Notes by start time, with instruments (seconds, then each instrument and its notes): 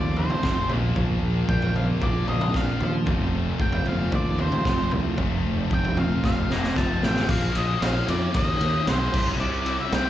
Already playing: fingered electric bass D#2, distorted electric guitar F2 C3 F3 A3 C4, clean electric guitar F2 A3 C4 F4, lead electric guitar D5
0.16 distorted electric guitar F2 C3 F3 A3 C4, clean electric guitar C4, lead electric guitar C5, floor tom
0.30 floor tom, mid tom
0.43 fingered electric bass F1, distorted electric guitar F2 C3 F3 A3 C4, clean electric guitar F3, kick, snare, mid tom
0.69 fingered electric bass A#1, distorted electric guitar A#2 F3 A#3 D4, clean electric guitar A#2, floor tom
0.96 fingered electric bass A#1, clean electric guitar A#2, kick, floor tom
1.23 fingered electric bass A#1, clean electric guitar A#3
1.49 fingered electric bass A#1, distorted electric guitar A#2 F3 A#3, clean electric guitar D4, lead electric guitar G5, kick
1.62 floor tom
1.76 clean electric guitar A#3, lead electric guitar F5, floor tom
2.00 fingered electric bass A#1, distorted electric guitar A#2 F3 A#3 D4, clean electric guitar F4, lead electric guitar D5, kick, floor tom
2.27 fingered electric bass A#1, distorted electric guitar A#2 F3 A#3 D4, clean electric guitar D4, lead electric guitar D#5, floor tom
2.41 floor tom, mid tom
2.54 fingered electric bass A#1, clean electric guitar D3, lead electric guitar F5, kick, snare, mid tom
2.80 fingered electric bass D#2, clean electric guitar A#3, floor tom
3.06 fingered electric bass F1, distorted electric guitar F2 C3 F3 A3 C4, clean electric guitar F2, kick, floor tom
3.34 clean electric guitar A3
3.60 fingered electric bass F1, clean electric guitar C4, lead electric guitar G5, kick
3.72 floor tom
3.86 fingered electric bass F1, distorted electric guitar F2 C3 F3, clean electric guitar A3, lead electric guitar F5, floor tom
4.12 fingered electric bass D#2, clean electric guitar F4, lead electric guitar D5, kick, floor tom
4.38 distorted electric guitar F2 C3 F3 A3 C4, clean electric guitar C4, lead electric guitar C5, floor tom
4.52 floor tom, mid tom
4.64 fingered electric bass F1, distorted electric guitar F2 C3 F3 A3 C4, clean electric guitar F3, kick, snare, mid tom
4.91 fingered electric bass C2, clean electric guitar A3, floor tom
5.18 fingered electric bass F1, distorted electric guitar F2 C3 F3 A3 C4, clean electric guitar F2, kick, floor tom
5.45 fingered electric bass F1, clean electric guitar A3
5.71 fingered electric bass F1, clean electric guitar C4, lead electric guitar G5, kick
5.85 floor tom
5.97 distorted electric guitar F2 C3 F3, clean electric guitar A3, lead electric guitar F5, floor tom, mid tom
6.24 fingered electric bass F1, clean electric guitar F4, lead electric guitar F5, kick, snare
6.49 fingered electric bass F1, distorted electric guitar F2 C3 F3 A3 C4, clean electric guitar C4, lead electric guitar A#5, snare
6.63 snare
6.75 fingered electric bass F1, distorted electric guitar F2 C3 F3 A3 C4, clean electric guitar F3, lead electric guitar A5, kick, snare
7.03 fingered electric bass A1, clean electric guitar A3, lead electric guitar G5, snare
7.16 snare
7.28 fingered electric bass A#1, distorted electric guitar A#2 F3 A#3 C4, lead electric guitar F5, kick, crash
7.55 fingered electric bass A#1, distorted electric guitar A#2 F3 A#3 C4, lead electric guitar D#5, ride
7.82 fingered electric bass A#1, distorted electric guitar A#2 F3 A#3 C4, lead electric guitar F5, snare, ride
8.08 fingered electric bass F2, distorted electric guitar A#2 F3 A#3 C4, lead electric guitar D5, ride
8.34 fingered electric bass D#2, distorted electric guitar D#3 G3 A#3 D#4, lead electric guitar D#5, kick, ride
8.61 fingered electric bass D#2, distorted electric guitar D#3 G3 A#3 D#4, ride
8.87 fingered electric bass B1, distorted electric guitar D#3 G3 A#3 D#4, lead electric guitar C5, snare, ride
9.14 fingered electric bass C2, distorted electric guitar C3 G3 C4 E4, kick, crash
9.40 fingered electric bass C2, distorted electric guitar C3 G3 C4 E4, lead electric guitar D5
9.66 distorted electric guitar C3 G3 C4 E4, ride
9.80 lead electric guitar E5
9.92 fingered electric bass C2, distorted electric guitar C3 G3 C4 E4, lead electric guitar G5, snare, ride